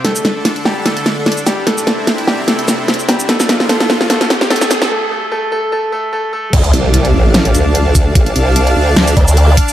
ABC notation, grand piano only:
X:1
M:4/4
L:1/8
Q:"Swing 16ths" 1/4=148
K:Dm
V:1 name="Grand piano"
[A,A]3 [G,G] [A,A]3 [G,G] | [A,A]3 [G,G] [A,A]3 [G,G] | [A,A]2 [A,A]2 [A,A]2 [A,A]2 | [A,A] [A,A] [A,A] [A,A] [A,A] [A,A] [A,A] [A,A] |
z8 | z8 |]